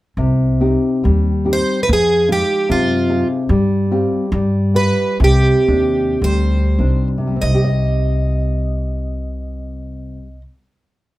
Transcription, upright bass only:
0, 0, Header, 1, 2, 480
1, 0, Start_track
1, 0, Key_signature, -3, "minor"
1, 0, Tempo, 853485
1, 100, Time_signature, 2, 2, 24, 8
1, 1057, Tempo, 814111
1, 2497, Tempo, 881057
1, 2977, Tempo, 1011804
1, 3457, Tempo, 1200000
1, 3937, Tempo, 1257862
1, 5375, End_track
2, 0, Start_track
2, 0, Title_t, "Upright bass"
2, 0, Program_c, 0, 32
2, 95, Note_on_c, 0, 36, 67
2, 413, Note_off_c, 0, 36, 0
2, 590, Note_on_c, 0, 39, 72
2, 895, Note_off_c, 0, 39, 0
2, 1063, Note_on_c, 0, 41, 74
2, 1373, Note_off_c, 0, 41, 0
2, 1540, Note_on_c, 0, 42, 79
2, 1848, Note_off_c, 0, 42, 0
2, 2008, Note_on_c, 0, 43, 80
2, 2325, Note_off_c, 0, 43, 0
2, 2495, Note_on_c, 0, 43, 91
2, 2808, Note_off_c, 0, 43, 0
2, 2974, Note_on_c, 0, 36, 82
2, 3124, Note_off_c, 0, 36, 0
2, 3203, Note_on_c, 0, 39, 65
2, 3437, Note_off_c, 0, 39, 0
2, 3457, Note_on_c, 0, 38, 64
2, 3672, Note_off_c, 0, 38, 0
2, 3685, Note_on_c, 0, 36, 58
2, 3921, Note_off_c, 0, 36, 0
2, 3940, Note_on_c, 0, 36, 66
2, 5084, Note_off_c, 0, 36, 0
2, 5375, End_track
0, 0, End_of_file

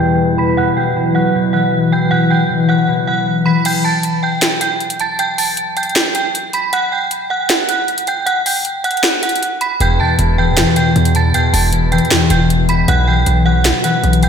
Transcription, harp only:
0, 0, Header, 1, 2, 480
1, 0, Start_track
1, 0, Tempo, 384615
1, 716, Time_signature, 4, 2, 24, 8
1, 17831, End_track
2, 0, Start_track
2, 0, Title_t, "Harp"
2, 0, Program_c, 0, 46
2, 0, Note_on_c, 0, 40, 72
2, 0, Note_on_c, 0, 47, 76
2, 464, Note_off_c, 0, 47, 0
2, 479, Note_on_c, 0, 47, 73
2, 703, Note_off_c, 0, 47, 0
2, 718, Note_on_c, 0, 47, 86
2, 779, Note_off_c, 0, 40, 0
2, 954, Note_on_c, 0, 52, 76
2, 1184, Note_off_c, 0, 47, 0
2, 1199, Note_on_c, 0, 47, 68
2, 1259, Note_off_c, 0, 52, 0
2, 1438, Note_on_c, 0, 54, 96
2, 1664, Note_off_c, 0, 47, 0
2, 1679, Note_on_c, 0, 47, 70
2, 1913, Note_on_c, 0, 52, 79
2, 2384, Note_off_c, 0, 52, 0
2, 2399, Note_on_c, 0, 52, 77
2, 2621, Note_off_c, 0, 47, 0
2, 2636, Note_on_c, 0, 47, 83
2, 2699, Note_off_c, 0, 52, 0
2, 2882, Note_on_c, 0, 52, 77
2, 3100, Note_off_c, 0, 47, 0
2, 3115, Note_on_c, 0, 47, 66
2, 3179, Note_off_c, 0, 52, 0
2, 3338, Note_off_c, 0, 54, 0
2, 3353, Note_on_c, 0, 54, 90
2, 3579, Note_off_c, 0, 47, 0
2, 3594, Note_on_c, 0, 47, 73
2, 3836, Note_on_c, 0, 52, 74
2, 4302, Note_off_c, 0, 52, 0
2, 4317, Note_on_c, 0, 52, 73
2, 4618, Note_off_c, 0, 47, 0
2, 4619, Note_off_c, 0, 52, 0
2, 4619, Note_off_c, 0, 54, 0
2, 12238, Note_on_c, 0, 40, 90
2, 12480, Note_on_c, 0, 47, 78
2, 12699, Note_off_c, 0, 40, 0
2, 12714, Note_on_c, 0, 40, 73
2, 12957, Note_on_c, 0, 52, 97
2, 13181, Note_off_c, 0, 40, 0
2, 13196, Note_on_c, 0, 40, 75
2, 13420, Note_off_c, 0, 47, 0
2, 13435, Note_on_c, 0, 47, 82
2, 13499, Note_off_c, 0, 52, 0
2, 13897, Note_off_c, 0, 47, 0
2, 13912, Note_on_c, 0, 47, 73
2, 14143, Note_off_c, 0, 40, 0
2, 14158, Note_on_c, 0, 40, 88
2, 14380, Note_off_c, 0, 47, 0
2, 14395, Note_on_c, 0, 47, 71
2, 14624, Note_off_c, 0, 40, 0
2, 14639, Note_on_c, 0, 40, 69
2, 14877, Note_on_c, 0, 52, 94
2, 15099, Note_off_c, 0, 40, 0
2, 15114, Note_on_c, 0, 40, 75
2, 15343, Note_off_c, 0, 47, 0
2, 15358, Note_on_c, 0, 47, 78
2, 15419, Note_off_c, 0, 52, 0
2, 15824, Note_off_c, 0, 47, 0
2, 15839, Note_on_c, 0, 47, 74
2, 16063, Note_off_c, 0, 47, 0
2, 16078, Note_on_c, 0, 47, 88
2, 16139, Note_off_c, 0, 40, 0
2, 16314, Note_on_c, 0, 52, 77
2, 16544, Note_off_c, 0, 47, 0
2, 16559, Note_on_c, 0, 47, 73
2, 16619, Note_off_c, 0, 52, 0
2, 16797, Note_on_c, 0, 54, 101
2, 17024, Note_off_c, 0, 47, 0
2, 17039, Note_on_c, 0, 47, 72
2, 17274, Note_on_c, 0, 52, 78
2, 17745, Note_off_c, 0, 52, 0
2, 17760, Note_on_c, 0, 52, 81
2, 17831, Note_off_c, 0, 47, 0
2, 17831, Note_off_c, 0, 52, 0
2, 17831, Note_off_c, 0, 54, 0
2, 17831, End_track
0, 0, End_of_file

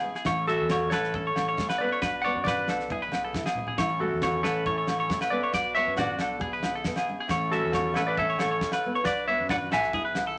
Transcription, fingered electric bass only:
0, 0, Header, 1, 2, 480
1, 0, Start_track
1, 0, Key_signature, 3, "major"
1, 0, Tempo, 439560
1, 289, Time_signature, 4, 2, 24, 8
1, 11337, End_track
2, 0, Start_track
2, 0, Title_t, "Fingered electric bass"
2, 0, Program_c, 0, 33
2, 279, Note_on_c, 0, 33, 101
2, 629, Note_off_c, 0, 33, 0
2, 660, Note_on_c, 0, 40, 97
2, 994, Note_off_c, 0, 40, 0
2, 1011, Note_on_c, 0, 33, 87
2, 1465, Note_off_c, 0, 33, 0
2, 1480, Note_on_c, 0, 33, 72
2, 1711, Note_off_c, 0, 33, 0
2, 2209, Note_on_c, 0, 35, 111
2, 2554, Note_off_c, 0, 35, 0
2, 2568, Note_on_c, 0, 42, 99
2, 2907, Note_off_c, 0, 42, 0
2, 2919, Note_on_c, 0, 35, 87
2, 3151, Note_off_c, 0, 35, 0
2, 3177, Note_on_c, 0, 35, 105
2, 3397, Note_off_c, 0, 35, 0
2, 3403, Note_on_c, 0, 35, 71
2, 3633, Note_off_c, 0, 35, 0
2, 4129, Note_on_c, 0, 33, 100
2, 4474, Note_off_c, 0, 33, 0
2, 4505, Note_on_c, 0, 40, 94
2, 4836, Note_off_c, 0, 40, 0
2, 4866, Note_on_c, 0, 33, 94
2, 5313, Note_off_c, 0, 33, 0
2, 5330, Note_on_c, 0, 33, 76
2, 5557, Note_off_c, 0, 33, 0
2, 6049, Note_on_c, 0, 35, 102
2, 6394, Note_off_c, 0, 35, 0
2, 6407, Note_on_c, 0, 42, 93
2, 6746, Note_off_c, 0, 42, 0
2, 6766, Note_on_c, 0, 35, 102
2, 6990, Note_off_c, 0, 35, 0
2, 6996, Note_on_c, 0, 35, 103
2, 7229, Note_off_c, 0, 35, 0
2, 7238, Note_on_c, 0, 35, 73
2, 7470, Note_off_c, 0, 35, 0
2, 7965, Note_on_c, 0, 33, 113
2, 8312, Note_off_c, 0, 33, 0
2, 8333, Note_on_c, 0, 40, 92
2, 8670, Note_off_c, 0, 40, 0
2, 8687, Note_on_c, 0, 33, 99
2, 9142, Note_off_c, 0, 33, 0
2, 9171, Note_on_c, 0, 33, 78
2, 9397, Note_off_c, 0, 33, 0
2, 9884, Note_on_c, 0, 35, 105
2, 10232, Note_off_c, 0, 35, 0
2, 10267, Note_on_c, 0, 42, 98
2, 10597, Note_off_c, 0, 42, 0
2, 10620, Note_on_c, 0, 35, 86
2, 10842, Note_off_c, 0, 35, 0
2, 10848, Note_on_c, 0, 35, 107
2, 11076, Note_off_c, 0, 35, 0
2, 11094, Note_on_c, 0, 35, 82
2, 11319, Note_off_c, 0, 35, 0
2, 11337, End_track
0, 0, End_of_file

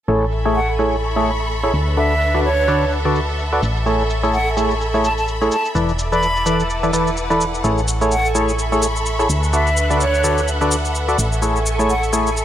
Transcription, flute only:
0, 0, Header, 1, 2, 480
1, 0, Start_track
1, 0, Key_signature, 3, "major"
1, 0, Tempo, 472441
1, 83, Time_signature, 4, 2, 24, 8
1, 12646, End_track
2, 0, Start_track
2, 0, Title_t, "Flute"
2, 0, Program_c, 0, 73
2, 562, Note_on_c, 0, 78, 83
2, 720, Note_off_c, 0, 78, 0
2, 2004, Note_on_c, 0, 76, 85
2, 2463, Note_off_c, 0, 76, 0
2, 2482, Note_on_c, 0, 73, 87
2, 2963, Note_off_c, 0, 73, 0
2, 4403, Note_on_c, 0, 78, 87
2, 4561, Note_off_c, 0, 78, 0
2, 5124, Note_on_c, 0, 81, 82
2, 5212, Note_off_c, 0, 81, 0
2, 5263, Note_on_c, 0, 81, 68
2, 5327, Note_off_c, 0, 81, 0
2, 5603, Note_on_c, 0, 81, 82
2, 5761, Note_off_c, 0, 81, 0
2, 6221, Note_on_c, 0, 83, 86
2, 6886, Note_off_c, 0, 83, 0
2, 8244, Note_on_c, 0, 78, 85
2, 8401, Note_off_c, 0, 78, 0
2, 9684, Note_on_c, 0, 76, 83
2, 10143, Note_off_c, 0, 76, 0
2, 10165, Note_on_c, 0, 73, 86
2, 10644, Note_off_c, 0, 73, 0
2, 12082, Note_on_c, 0, 78, 85
2, 12240, Note_off_c, 0, 78, 0
2, 12646, End_track
0, 0, End_of_file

